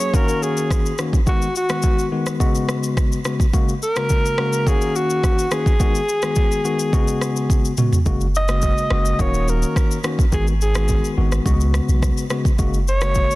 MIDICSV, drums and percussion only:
0, 0, Header, 1, 2, 480
1, 0, Start_track
1, 0, Key_signature, 6, "major"
1, 0, Tempo, 566038
1, 1076, Time_signature, 4, 2, 24, 8
1, 11323, End_track
2, 0, Start_track
2, 0, Title_t, "Drums"
2, 1, Note_on_c, 9, 82, 61
2, 86, Note_off_c, 9, 82, 0
2, 115, Note_on_c, 9, 36, 104
2, 121, Note_on_c, 9, 82, 73
2, 200, Note_off_c, 9, 36, 0
2, 205, Note_off_c, 9, 82, 0
2, 242, Note_on_c, 9, 82, 53
2, 327, Note_off_c, 9, 82, 0
2, 362, Note_on_c, 9, 82, 53
2, 446, Note_off_c, 9, 82, 0
2, 484, Note_on_c, 9, 82, 54
2, 569, Note_off_c, 9, 82, 0
2, 598, Note_on_c, 9, 36, 98
2, 602, Note_on_c, 9, 37, 88
2, 605, Note_on_c, 9, 82, 74
2, 683, Note_off_c, 9, 36, 0
2, 687, Note_off_c, 9, 37, 0
2, 690, Note_off_c, 9, 82, 0
2, 727, Note_on_c, 9, 82, 52
2, 811, Note_off_c, 9, 82, 0
2, 833, Note_on_c, 9, 82, 55
2, 838, Note_on_c, 9, 37, 96
2, 918, Note_off_c, 9, 82, 0
2, 922, Note_off_c, 9, 37, 0
2, 959, Note_on_c, 9, 36, 92
2, 966, Note_on_c, 9, 82, 49
2, 1044, Note_off_c, 9, 36, 0
2, 1051, Note_off_c, 9, 82, 0
2, 1076, Note_on_c, 9, 36, 114
2, 1076, Note_on_c, 9, 82, 65
2, 1161, Note_off_c, 9, 36, 0
2, 1161, Note_off_c, 9, 82, 0
2, 1202, Note_on_c, 9, 82, 47
2, 1287, Note_off_c, 9, 82, 0
2, 1320, Note_on_c, 9, 82, 57
2, 1405, Note_off_c, 9, 82, 0
2, 1434, Note_on_c, 9, 82, 50
2, 1439, Note_on_c, 9, 37, 104
2, 1519, Note_off_c, 9, 82, 0
2, 1524, Note_off_c, 9, 37, 0
2, 1547, Note_on_c, 9, 82, 74
2, 1557, Note_on_c, 9, 36, 87
2, 1632, Note_off_c, 9, 82, 0
2, 1641, Note_off_c, 9, 36, 0
2, 1685, Note_on_c, 9, 82, 43
2, 1770, Note_off_c, 9, 82, 0
2, 1920, Note_on_c, 9, 82, 57
2, 1921, Note_on_c, 9, 37, 94
2, 2005, Note_off_c, 9, 82, 0
2, 2006, Note_off_c, 9, 37, 0
2, 2036, Note_on_c, 9, 36, 100
2, 2041, Note_on_c, 9, 82, 76
2, 2121, Note_off_c, 9, 36, 0
2, 2126, Note_off_c, 9, 82, 0
2, 2161, Note_on_c, 9, 82, 52
2, 2246, Note_off_c, 9, 82, 0
2, 2278, Note_on_c, 9, 37, 89
2, 2281, Note_on_c, 9, 82, 54
2, 2363, Note_off_c, 9, 37, 0
2, 2366, Note_off_c, 9, 82, 0
2, 2403, Note_on_c, 9, 82, 53
2, 2487, Note_off_c, 9, 82, 0
2, 2519, Note_on_c, 9, 36, 94
2, 2521, Note_on_c, 9, 37, 86
2, 2524, Note_on_c, 9, 82, 74
2, 2604, Note_off_c, 9, 36, 0
2, 2606, Note_off_c, 9, 37, 0
2, 2609, Note_off_c, 9, 82, 0
2, 2647, Note_on_c, 9, 82, 52
2, 2732, Note_off_c, 9, 82, 0
2, 2754, Note_on_c, 9, 82, 52
2, 2758, Note_on_c, 9, 37, 96
2, 2838, Note_off_c, 9, 82, 0
2, 2843, Note_off_c, 9, 37, 0
2, 2881, Note_on_c, 9, 36, 94
2, 2888, Note_on_c, 9, 82, 47
2, 2966, Note_off_c, 9, 36, 0
2, 2973, Note_off_c, 9, 82, 0
2, 2998, Note_on_c, 9, 36, 114
2, 2999, Note_on_c, 9, 82, 64
2, 3083, Note_off_c, 9, 36, 0
2, 3084, Note_off_c, 9, 82, 0
2, 3126, Note_on_c, 9, 82, 49
2, 3210, Note_off_c, 9, 82, 0
2, 3243, Note_on_c, 9, 82, 53
2, 3328, Note_off_c, 9, 82, 0
2, 3358, Note_on_c, 9, 82, 49
2, 3363, Note_on_c, 9, 37, 106
2, 3443, Note_off_c, 9, 82, 0
2, 3448, Note_off_c, 9, 37, 0
2, 3472, Note_on_c, 9, 82, 74
2, 3479, Note_on_c, 9, 36, 86
2, 3556, Note_off_c, 9, 82, 0
2, 3564, Note_off_c, 9, 36, 0
2, 3608, Note_on_c, 9, 82, 44
2, 3693, Note_off_c, 9, 82, 0
2, 3714, Note_on_c, 9, 37, 99
2, 3799, Note_off_c, 9, 37, 0
2, 3841, Note_on_c, 9, 82, 58
2, 3925, Note_off_c, 9, 82, 0
2, 3957, Note_on_c, 9, 36, 106
2, 3961, Note_on_c, 9, 82, 76
2, 4042, Note_off_c, 9, 36, 0
2, 4046, Note_off_c, 9, 82, 0
2, 4083, Note_on_c, 9, 82, 54
2, 4167, Note_off_c, 9, 82, 0
2, 4203, Note_on_c, 9, 82, 53
2, 4288, Note_off_c, 9, 82, 0
2, 4324, Note_on_c, 9, 82, 55
2, 4409, Note_off_c, 9, 82, 0
2, 4439, Note_on_c, 9, 36, 97
2, 4442, Note_on_c, 9, 37, 89
2, 4444, Note_on_c, 9, 82, 76
2, 4524, Note_off_c, 9, 36, 0
2, 4527, Note_off_c, 9, 37, 0
2, 4529, Note_off_c, 9, 82, 0
2, 4567, Note_on_c, 9, 82, 53
2, 4652, Note_off_c, 9, 82, 0
2, 4673, Note_on_c, 9, 82, 53
2, 4677, Note_on_c, 9, 37, 99
2, 4758, Note_off_c, 9, 82, 0
2, 4762, Note_off_c, 9, 37, 0
2, 4800, Note_on_c, 9, 36, 90
2, 4807, Note_on_c, 9, 82, 48
2, 4885, Note_off_c, 9, 36, 0
2, 4892, Note_off_c, 9, 82, 0
2, 4918, Note_on_c, 9, 36, 118
2, 4918, Note_on_c, 9, 82, 64
2, 5003, Note_off_c, 9, 36, 0
2, 5003, Note_off_c, 9, 82, 0
2, 5045, Note_on_c, 9, 82, 48
2, 5130, Note_off_c, 9, 82, 0
2, 5162, Note_on_c, 9, 82, 55
2, 5247, Note_off_c, 9, 82, 0
2, 5276, Note_on_c, 9, 82, 50
2, 5281, Note_on_c, 9, 37, 106
2, 5361, Note_off_c, 9, 82, 0
2, 5366, Note_off_c, 9, 37, 0
2, 5389, Note_on_c, 9, 82, 75
2, 5398, Note_on_c, 9, 36, 91
2, 5474, Note_off_c, 9, 82, 0
2, 5482, Note_off_c, 9, 36, 0
2, 5526, Note_on_c, 9, 82, 45
2, 5611, Note_off_c, 9, 82, 0
2, 5639, Note_on_c, 9, 82, 50
2, 5723, Note_off_c, 9, 82, 0
2, 5761, Note_on_c, 9, 82, 57
2, 5846, Note_off_c, 9, 82, 0
2, 5876, Note_on_c, 9, 36, 104
2, 5881, Note_on_c, 9, 82, 72
2, 5961, Note_off_c, 9, 36, 0
2, 5966, Note_off_c, 9, 82, 0
2, 6001, Note_on_c, 9, 82, 55
2, 6085, Note_off_c, 9, 82, 0
2, 6118, Note_on_c, 9, 37, 86
2, 6122, Note_on_c, 9, 82, 55
2, 6203, Note_off_c, 9, 37, 0
2, 6206, Note_off_c, 9, 82, 0
2, 6243, Note_on_c, 9, 82, 56
2, 6328, Note_off_c, 9, 82, 0
2, 6358, Note_on_c, 9, 36, 97
2, 6358, Note_on_c, 9, 48, 56
2, 6363, Note_on_c, 9, 82, 74
2, 6442, Note_off_c, 9, 48, 0
2, 6443, Note_off_c, 9, 36, 0
2, 6448, Note_off_c, 9, 82, 0
2, 6486, Note_on_c, 9, 82, 53
2, 6571, Note_off_c, 9, 82, 0
2, 6592, Note_on_c, 9, 82, 53
2, 6596, Note_on_c, 9, 45, 89
2, 6677, Note_off_c, 9, 82, 0
2, 6681, Note_off_c, 9, 45, 0
2, 6721, Note_on_c, 9, 43, 87
2, 6725, Note_on_c, 9, 82, 50
2, 6805, Note_off_c, 9, 43, 0
2, 6810, Note_off_c, 9, 82, 0
2, 6835, Note_on_c, 9, 82, 64
2, 6836, Note_on_c, 9, 36, 113
2, 6919, Note_off_c, 9, 82, 0
2, 6921, Note_off_c, 9, 36, 0
2, 6960, Note_on_c, 9, 82, 47
2, 7045, Note_off_c, 9, 82, 0
2, 7080, Note_on_c, 9, 82, 56
2, 7165, Note_off_c, 9, 82, 0
2, 7193, Note_on_c, 9, 82, 48
2, 7198, Note_on_c, 9, 37, 105
2, 7278, Note_off_c, 9, 82, 0
2, 7283, Note_off_c, 9, 37, 0
2, 7308, Note_on_c, 9, 82, 74
2, 7316, Note_on_c, 9, 36, 87
2, 7393, Note_off_c, 9, 82, 0
2, 7401, Note_off_c, 9, 36, 0
2, 7445, Note_on_c, 9, 82, 44
2, 7530, Note_off_c, 9, 82, 0
2, 7551, Note_on_c, 9, 37, 100
2, 7636, Note_off_c, 9, 37, 0
2, 7679, Note_on_c, 9, 82, 58
2, 7764, Note_off_c, 9, 82, 0
2, 7795, Note_on_c, 9, 36, 99
2, 7798, Note_on_c, 9, 82, 71
2, 7880, Note_off_c, 9, 36, 0
2, 7883, Note_off_c, 9, 82, 0
2, 7920, Note_on_c, 9, 82, 52
2, 8005, Note_off_c, 9, 82, 0
2, 8040, Note_on_c, 9, 82, 54
2, 8124, Note_off_c, 9, 82, 0
2, 8161, Note_on_c, 9, 82, 54
2, 8246, Note_off_c, 9, 82, 0
2, 8277, Note_on_c, 9, 36, 98
2, 8280, Note_on_c, 9, 37, 91
2, 8282, Note_on_c, 9, 82, 76
2, 8362, Note_off_c, 9, 36, 0
2, 8364, Note_off_c, 9, 37, 0
2, 8367, Note_off_c, 9, 82, 0
2, 8405, Note_on_c, 9, 82, 52
2, 8490, Note_off_c, 9, 82, 0
2, 8512, Note_on_c, 9, 82, 53
2, 8516, Note_on_c, 9, 37, 99
2, 8597, Note_off_c, 9, 82, 0
2, 8601, Note_off_c, 9, 37, 0
2, 8639, Note_on_c, 9, 36, 95
2, 8646, Note_on_c, 9, 82, 48
2, 8724, Note_off_c, 9, 36, 0
2, 8730, Note_off_c, 9, 82, 0
2, 8755, Note_on_c, 9, 82, 66
2, 8756, Note_on_c, 9, 36, 108
2, 8840, Note_off_c, 9, 82, 0
2, 8841, Note_off_c, 9, 36, 0
2, 8882, Note_on_c, 9, 82, 51
2, 8967, Note_off_c, 9, 82, 0
2, 9000, Note_on_c, 9, 82, 56
2, 9085, Note_off_c, 9, 82, 0
2, 9114, Note_on_c, 9, 82, 49
2, 9119, Note_on_c, 9, 37, 106
2, 9199, Note_off_c, 9, 82, 0
2, 9204, Note_off_c, 9, 37, 0
2, 9229, Note_on_c, 9, 82, 76
2, 9236, Note_on_c, 9, 36, 86
2, 9314, Note_off_c, 9, 82, 0
2, 9321, Note_off_c, 9, 36, 0
2, 9365, Note_on_c, 9, 82, 45
2, 9450, Note_off_c, 9, 82, 0
2, 9599, Note_on_c, 9, 82, 56
2, 9601, Note_on_c, 9, 37, 91
2, 9684, Note_off_c, 9, 82, 0
2, 9685, Note_off_c, 9, 37, 0
2, 9715, Note_on_c, 9, 36, 103
2, 9720, Note_on_c, 9, 82, 71
2, 9800, Note_off_c, 9, 36, 0
2, 9804, Note_off_c, 9, 82, 0
2, 9840, Note_on_c, 9, 82, 53
2, 9925, Note_off_c, 9, 82, 0
2, 9956, Note_on_c, 9, 37, 91
2, 9959, Note_on_c, 9, 82, 55
2, 10041, Note_off_c, 9, 37, 0
2, 10044, Note_off_c, 9, 82, 0
2, 10081, Note_on_c, 9, 82, 54
2, 10166, Note_off_c, 9, 82, 0
2, 10197, Note_on_c, 9, 36, 95
2, 10198, Note_on_c, 9, 37, 88
2, 10200, Note_on_c, 9, 82, 81
2, 10281, Note_off_c, 9, 36, 0
2, 10283, Note_off_c, 9, 37, 0
2, 10285, Note_off_c, 9, 82, 0
2, 10324, Note_on_c, 9, 82, 51
2, 10408, Note_off_c, 9, 82, 0
2, 10429, Note_on_c, 9, 82, 53
2, 10434, Note_on_c, 9, 37, 102
2, 10514, Note_off_c, 9, 82, 0
2, 10518, Note_off_c, 9, 37, 0
2, 10558, Note_on_c, 9, 36, 93
2, 10563, Note_on_c, 9, 82, 48
2, 10643, Note_off_c, 9, 36, 0
2, 10648, Note_off_c, 9, 82, 0
2, 10675, Note_on_c, 9, 36, 110
2, 10675, Note_on_c, 9, 82, 66
2, 10759, Note_off_c, 9, 82, 0
2, 10760, Note_off_c, 9, 36, 0
2, 10802, Note_on_c, 9, 82, 51
2, 10887, Note_off_c, 9, 82, 0
2, 10919, Note_on_c, 9, 82, 55
2, 11004, Note_off_c, 9, 82, 0
2, 11033, Note_on_c, 9, 82, 50
2, 11038, Note_on_c, 9, 37, 104
2, 11118, Note_off_c, 9, 82, 0
2, 11123, Note_off_c, 9, 37, 0
2, 11148, Note_on_c, 9, 82, 74
2, 11156, Note_on_c, 9, 36, 89
2, 11233, Note_off_c, 9, 82, 0
2, 11241, Note_off_c, 9, 36, 0
2, 11285, Note_on_c, 9, 82, 45
2, 11323, Note_off_c, 9, 82, 0
2, 11323, End_track
0, 0, End_of_file